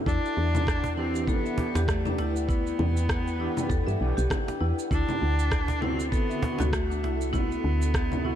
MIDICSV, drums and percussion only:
0, 0, Header, 1, 3, 480
1, 0, Start_track
1, 0, Key_signature, 1, "minor"
1, 0, Tempo, 606061
1, 53, Time_signature, 4, 2, 24, 8
1, 6615, End_track
2, 0, Start_track
2, 0, Title_t, "Cajon"
2, 663, Note_on_c, 9, 36, 83
2, 742, Note_off_c, 9, 36, 0
2, 903, Note_on_c, 9, 38, 36
2, 983, Note_off_c, 9, 38, 0
2, 1248, Note_on_c, 9, 36, 97
2, 1328, Note_off_c, 9, 36, 0
2, 1388, Note_on_c, 9, 38, 86
2, 1467, Note_off_c, 9, 38, 0
2, 1730, Note_on_c, 9, 38, 73
2, 1809, Note_off_c, 9, 38, 0
2, 3551, Note_on_c, 9, 38, 84
2, 3630, Note_off_c, 9, 38, 0
2, 4500, Note_on_c, 9, 36, 79
2, 4579, Note_off_c, 9, 36, 0
2, 4745, Note_on_c, 9, 38, 34
2, 4824, Note_off_c, 9, 38, 0
2, 5089, Note_on_c, 9, 36, 107
2, 5168, Note_off_c, 9, 36, 0
2, 5215, Note_on_c, 9, 38, 72
2, 5294, Note_off_c, 9, 38, 0
2, 5575, Note_on_c, 9, 38, 68
2, 5654, Note_off_c, 9, 38, 0
2, 6615, End_track
3, 0, Start_track
3, 0, Title_t, "Drums"
3, 50, Note_on_c, 9, 36, 106
3, 66, Note_on_c, 9, 82, 53
3, 129, Note_off_c, 9, 36, 0
3, 145, Note_off_c, 9, 82, 0
3, 202, Note_on_c, 9, 82, 33
3, 281, Note_off_c, 9, 82, 0
3, 434, Note_on_c, 9, 64, 84
3, 439, Note_on_c, 9, 82, 66
3, 513, Note_off_c, 9, 64, 0
3, 518, Note_off_c, 9, 82, 0
3, 530, Note_on_c, 9, 36, 99
3, 539, Note_on_c, 9, 37, 107
3, 544, Note_on_c, 9, 82, 56
3, 610, Note_off_c, 9, 36, 0
3, 619, Note_off_c, 9, 37, 0
3, 624, Note_off_c, 9, 82, 0
3, 676, Note_on_c, 9, 82, 33
3, 756, Note_off_c, 9, 82, 0
3, 916, Note_on_c, 9, 82, 74
3, 995, Note_off_c, 9, 82, 0
3, 1010, Note_on_c, 9, 36, 109
3, 1015, Note_on_c, 9, 64, 74
3, 1020, Note_on_c, 9, 82, 51
3, 1089, Note_off_c, 9, 36, 0
3, 1094, Note_off_c, 9, 64, 0
3, 1099, Note_off_c, 9, 82, 0
3, 1156, Note_on_c, 9, 82, 34
3, 1235, Note_off_c, 9, 82, 0
3, 1388, Note_on_c, 9, 37, 35
3, 1393, Note_on_c, 9, 82, 70
3, 1468, Note_off_c, 9, 37, 0
3, 1473, Note_off_c, 9, 82, 0
3, 1489, Note_on_c, 9, 36, 100
3, 1493, Note_on_c, 9, 37, 105
3, 1498, Note_on_c, 9, 82, 57
3, 1568, Note_off_c, 9, 36, 0
3, 1572, Note_off_c, 9, 37, 0
3, 1577, Note_off_c, 9, 82, 0
3, 1627, Note_on_c, 9, 64, 81
3, 1632, Note_on_c, 9, 82, 34
3, 1706, Note_off_c, 9, 64, 0
3, 1711, Note_off_c, 9, 82, 0
3, 1872, Note_on_c, 9, 82, 64
3, 1951, Note_off_c, 9, 82, 0
3, 1969, Note_on_c, 9, 36, 114
3, 1979, Note_on_c, 9, 82, 56
3, 2048, Note_off_c, 9, 36, 0
3, 2058, Note_off_c, 9, 82, 0
3, 2114, Note_on_c, 9, 82, 35
3, 2193, Note_off_c, 9, 82, 0
3, 2211, Note_on_c, 9, 64, 79
3, 2290, Note_off_c, 9, 64, 0
3, 2351, Note_on_c, 9, 82, 65
3, 2431, Note_off_c, 9, 82, 0
3, 2449, Note_on_c, 9, 36, 106
3, 2451, Note_on_c, 9, 37, 106
3, 2456, Note_on_c, 9, 82, 53
3, 2528, Note_off_c, 9, 36, 0
3, 2530, Note_off_c, 9, 37, 0
3, 2535, Note_off_c, 9, 82, 0
3, 2593, Note_on_c, 9, 82, 36
3, 2672, Note_off_c, 9, 82, 0
3, 2828, Note_on_c, 9, 64, 84
3, 2833, Note_on_c, 9, 82, 78
3, 2907, Note_off_c, 9, 64, 0
3, 2912, Note_off_c, 9, 82, 0
3, 2929, Note_on_c, 9, 36, 109
3, 2935, Note_on_c, 9, 82, 60
3, 3008, Note_off_c, 9, 36, 0
3, 3015, Note_off_c, 9, 82, 0
3, 3074, Note_on_c, 9, 82, 38
3, 3154, Note_off_c, 9, 82, 0
3, 3313, Note_on_c, 9, 82, 73
3, 3392, Note_off_c, 9, 82, 0
3, 3408, Note_on_c, 9, 36, 103
3, 3413, Note_on_c, 9, 37, 105
3, 3413, Note_on_c, 9, 64, 82
3, 3418, Note_on_c, 9, 82, 56
3, 3487, Note_off_c, 9, 36, 0
3, 3492, Note_off_c, 9, 37, 0
3, 3492, Note_off_c, 9, 64, 0
3, 3497, Note_off_c, 9, 82, 0
3, 3554, Note_on_c, 9, 82, 33
3, 3634, Note_off_c, 9, 82, 0
3, 3793, Note_on_c, 9, 82, 66
3, 3872, Note_off_c, 9, 82, 0
3, 3888, Note_on_c, 9, 36, 110
3, 3896, Note_on_c, 9, 82, 57
3, 3967, Note_off_c, 9, 36, 0
3, 3975, Note_off_c, 9, 82, 0
3, 4029, Note_on_c, 9, 64, 78
3, 4034, Note_on_c, 9, 82, 35
3, 4108, Note_off_c, 9, 64, 0
3, 4113, Note_off_c, 9, 82, 0
3, 4271, Note_on_c, 9, 82, 71
3, 4350, Note_off_c, 9, 82, 0
3, 4368, Note_on_c, 9, 36, 110
3, 4369, Note_on_c, 9, 37, 97
3, 4374, Note_on_c, 9, 82, 55
3, 4447, Note_off_c, 9, 36, 0
3, 4448, Note_off_c, 9, 37, 0
3, 4453, Note_off_c, 9, 82, 0
3, 4512, Note_on_c, 9, 82, 36
3, 4591, Note_off_c, 9, 82, 0
3, 4610, Note_on_c, 9, 64, 75
3, 4689, Note_off_c, 9, 64, 0
3, 4751, Note_on_c, 9, 82, 70
3, 4830, Note_off_c, 9, 82, 0
3, 4848, Note_on_c, 9, 36, 112
3, 4856, Note_on_c, 9, 82, 57
3, 4927, Note_off_c, 9, 36, 0
3, 4935, Note_off_c, 9, 82, 0
3, 4995, Note_on_c, 9, 82, 36
3, 5074, Note_off_c, 9, 82, 0
3, 5230, Note_on_c, 9, 37, 33
3, 5230, Note_on_c, 9, 64, 76
3, 5235, Note_on_c, 9, 82, 76
3, 5309, Note_off_c, 9, 37, 0
3, 5309, Note_off_c, 9, 64, 0
3, 5314, Note_off_c, 9, 82, 0
3, 5329, Note_on_c, 9, 36, 107
3, 5331, Note_on_c, 9, 37, 106
3, 5336, Note_on_c, 9, 82, 58
3, 5408, Note_off_c, 9, 36, 0
3, 5410, Note_off_c, 9, 37, 0
3, 5415, Note_off_c, 9, 82, 0
3, 5476, Note_on_c, 9, 82, 37
3, 5555, Note_off_c, 9, 82, 0
3, 5713, Note_on_c, 9, 82, 71
3, 5792, Note_off_c, 9, 82, 0
3, 5809, Note_on_c, 9, 36, 103
3, 5813, Note_on_c, 9, 64, 77
3, 5818, Note_on_c, 9, 82, 58
3, 5889, Note_off_c, 9, 36, 0
3, 5892, Note_off_c, 9, 64, 0
3, 5897, Note_off_c, 9, 82, 0
3, 5953, Note_on_c, 9, 82, 36
3, 6033, Note_off_c, 9, 82, 0
3, 6193, Note_on_c, 9, 82, 69
3, 6272, Note_off_c, 9, 82, 0
3, 6290, Note_on_c, 9, 36, 117
3, 6292, Note_on_c, 9, 37, 97
3, 6297, Note_on_c, 9, 82, 57
3, 6369, Note_off_c, 9, 36, 0
3, 6372, Note_off_c, 9, 37, 0
3, 6377, Note_off_c, 9, 82, 0
3, 6429, Note_on_c, 9, 64, 75
3, 6434, Note_on_c, 9, 82, 35
3, 6508, Note_off_c, 9, 64, 0
3, 6513, Note_off_c, 9, 82, 0
3, 6615, End_track
0, 0, End_of_file